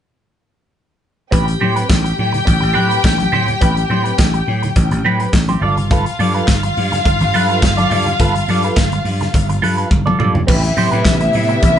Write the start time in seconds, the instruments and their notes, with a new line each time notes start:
1.31 slap bass A1, clean electric guitar C4 G4 B4, violin section G4 G5, kick, closed hi-hat
1.47 muted clean electric guitar stroke, closed hi-hat
1.61 slap bass A2, clean electric guitar C4 G4 C5, high conga
1.76 clean electric guitar C4 G4 B4, closed hi-hat
1.89 slap bass A1, muted clean electric guitar stroke, kick, snare, clap, closed hi-hat
2.04 muted clean electric guitar stroke, closed hi-hat
2.19 slap bass A2, high conga
2.32 muted clean electric guitar stroke, closed hi-hat, low conga
2.45 slap bass A1, muted clean electric guitar stroke, kick, closed hi-hat, muted conga
2.61 slap bass A1, muted clean electric guitar stroke, closed hi-hat
2.74 slap bass A2, clean electric guitar C4 G4 B4, high conga
2.89 clean electric guitar C4 G4 B4, closed hi-hat
3.04 slap bass A1, kick, snare, clap, closed hi-hat
3.18 muted clean electric guitar stroke, closed hi-hat, muted conga, high conga
3.32 slap bass A2, clean electric guitar C4 G4 C5, low conga
3.48 muted clean electric guitar stroke, closed hi-hat, low conga
3.61 slap bass A1, clean electric guitar C4 G4 B4, kick, closed hi-hat, muted conga
3.76 muted clean electric guitar stroke, closed hi-hat, muted conga
3.90 slap bass A2, clean electric guitar C4 G4 C5, high conga
4.04 clean electric guitar C4 G4 B4, closed hi-hat
4.19 slap bass A1, muted clean electric guitar stroke, kick, snare, clap, closed hi-hat
4.34 muted clean electric guitar stroke, closed hi-hat
4.47 slap bass A2, high conga
4.62 muted clean electric guitar stroke, closed hi-hat, low conga
4.76 slap bass A1, muted clean electric guitar stroke, kick, closed hi-hat, muted conga
4.91 slap bass A1, muted clean electric guitar stroke, closed hi-hat, muted conga
5.04 slap bass A2, clean electric guitar C4 G4 B4, high conga
5.20 clean electric guitar C4 G4 B4, closed hi-hat
5.33 slap bass A1, kick, snare, clap, closed hi-hat
5.49 clean electric guitar C4 G4 C5, closed hi-hat, high conga
5.61 slap bass G1, clean electric guitar F4 A4 D5, violin section F4 F5, low conga
5.77 muted clean electric guitar stroke, closed hi-hat, low conga
5.91 clean electric guitar F4 A4 B4, kick, closed hi-hat, muted conga
6.06 muted clean electric guitar stroke, closed hi-hat
6.19 slap bass G2, clean electric guitar F4 A4 D5, open hi-hat, high conga
6.34 clean electric guitar F4 A4 B4, closed hi-hat
6.48 slap bass G1, kick, snare, clap, closed hi-hat
6.63 muted clean electric guitar stroke, closed hi-hat, muted conga
6.77 slap bass G2, open hi-hat, high conga
6.92 muted clean electric guitar stroke, snare, closed hi-hat, low conga
7.05 slap bass G1, muted clean electric guitar stroke, kick, closed hi-hat, muted conga
7.21 slap bass G1, muted clean electric guitar stroke, closed hi-hat
7.34 slap bass G2, clean electric guitar F4 A4 B4, open hi-hat, high conga
7.49 clean electric guitar F4 A4 B4, closed hi-hat
7.62 slap bass G1, muted clean electric guitar stroke, kick, snare, clap, closed hi-hat, muted conga
7.77 clean electric guitar F4 A4 D5, closed hi-hat, muted conga, high conga
7.90 slap bass G2, clean electric guitar F4 A4 D5, open hi-hat, low conga
8.06 muted clean electric guitar stroke, closed hi-hat, low conga
8.20 slap bass G1, clean electric guitar F4 A4 B4, kick, closed hi-hat, muted conga
8.35 closed hi-hat, muted conga
8.48 slap bass G2, clean electric guitar F4 A4 D5, open hi-hat, high conga
8.63 clean electric guitar F4 A4 B4, closed hi-hat
8.77 slap bass G1, kick, snare, clap, closed hi-hat
8.92 muted clean electric guitar stroke, closed hi-hat, muted conga
9.05 slap bass G2, open hi-hat, high conga
9.21 muted clean electric guitar stroke, snare, closed hi-hat, low conga
9.34 slap bass G1, muted clean electric guitar stroke, kick, closed hi-hat
9.49 slap bass G1, muted clean electric guitar stroke, closed hi-hat, muted conga
9.62 slap bass G2, clean electric guitar F4 A4 B4, open hi-hat, high conga
9.77 clean electric guitar F4 A4 B4, closed hi-hat
9.91 slap bass G1, kick, high tom
10.06 clean electric guitar F4 A4 D5, mid tom, muted conga, high conga
10.19 slap bass G2, clean electric guitar F4 A4 D5, mid tom, low conga
10.34 muted clean electric guitar stroke, floor tom, low conga
10.47 slap bass A1, string section C3 A3 B3 G4, clean electric guitar C4 G4 B4, violin section E4 E5, kick, crash, muted conga
10.63 muted clean electric guitar stroke, closed hi-hat, muted conga
10.77 slap bass A2, clean electric guitar C4 G4 C5, open hi-hat, high conga
10.92 slap bass A2, clean electric guitar C4 G4 B4, closed hi-hat
11.05 slap bass A1, muted clean electric guitar stroke, kick, snare, clap, closed hi-hat
11.20 muted clean electric guitar stroke, closed hi-hat
11.33 slap bass A2, open hi-hat, high conga
11.49 muted clean electric guitar stroke, closed hi-hat
11.62 slap bass A1, muted clean electric guitar stroke, kick, closed hi-hat, muted conga